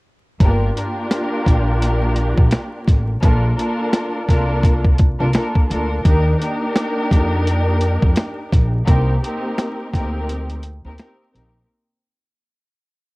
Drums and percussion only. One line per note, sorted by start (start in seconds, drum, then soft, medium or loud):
0.40 kick loud
0.40 closed hi-hat medium
0.77 closed hi-hat medium
1.11 snare loud
1.11 snare medium
1.11 closed hi-hat medium
1.46 kick medium
1.46 closed hi-hat medium
1.82 closed hi-hat loud
2.16 closed hi-hat medium
2.38 kick medium
2.51 snare loud
2.51 snare medium
2.51 closed hi-hat medium
2.87 kick medium
2.87 snare soft
2.87 closed hi-hat medium
3.23 kick loud
3.23 closed hi-hat medium
3.59 closed hi-hat medium
3.93 snare loud
3.93 snare medium
3.93 closed hi-hat medium
4.29 kick medium
4.29 snare soft
4.29 closed hi-hat medium
4.63 kick loud
4.63 closed hi-hat loud
4.85 kick loud
4.98 kick medium
4.98 closed hi-hat medium
5.33 snare loud
5.33 snare medium
5.33 closed hi-hat medium
5.55 kick medium
5.71 closed hi-hat medium
6.05 kick loud
6.05 closed hi-hat medium
6.42 closed hi-hat medium
6.76 snare loud
6.76 snare medium
6.76 closed hi-hat medium
7.11 kick medium
7.11 closed hi-hat medium
7.47 closed hi-hat loud
7.81 closed hi-hat medium
8.02 kick medium
8.16 snare loud
8.16 snare medium
8.16 closed hi-hat medium
8.52 kick medium
8.52 snare soft
8.52 closed hi-hat medium
8.87 kick loud
8.87 closed hi-hat medium
9.24 closed hi-hat medium
9.58 snare loud
9.58 snare medium
9.58 closed hi-hat medium
9.94 kick medium
9.94 snare soft
9.94 closed hi-hat medium
10.29 closed hi-hat loud
10.50 closed hi-hat soft
10.63 closed hi-hat medium
10.98 snare loud
10.98 snare medium
10.98 closed hi-hat medium
11.36 closed hi-hat medium